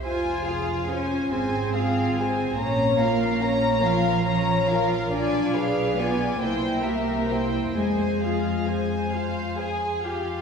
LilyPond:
<<
  \new Staff \with { instrumentName = "Violin section" } { \time 6/8 \key f \minor \tempo 4. = 46 aes''8 f''8 aes''8 aes''8 f''8 aes''8 | bes''8 f''8 bes''8 f''8 bes''8 f''8 | gis''8 f''8 gis''8 g''8 e''8 g''8 | aes''8 f''8 aes''8 f''8 aes''8 f''8 | }
  \new Staff \with { instrumentName = "Violin section" } { \time 6/8 \key f \minor c''8 aes'8 c''8 c''8 aes'8 c''8 | des''8 bes'8 des''8 bes'8 des''8 bes'8 | d''8 b'8 d''8 c''8 bes'8 c''8 | c''8 aes'8 c''8 c''8 aes'8 g'8 | }
  \new Staff \with { instrumentName = "Viola section" } { \time 6/8 \key f \minor f'8 aes'8 f'8 aes'8 f'8 aes'8 | des'8 f'8 des'8 f'8 des'8 f'8 | f'8 gis'8 f'8 e'8 g'8 e'8 | aes'8 f'8 aes'8 f'8 aes'8 f'8 | }
  \new Staff \with { instrumentName = "Cello section" } { \time 6/8 \key f \minor f'4 des'8 c'4. | bes4. f4. | d'4 b8 bes4. | aes4. r4. | }
  \new Staff \with { instrumentName = "Double bass section" } { \clef bass \time 6/8 \key f \minor f,,4. aes,,4. | bes,,2. | b,,4. c,4. | f,2~ f,8. r16 | }
>>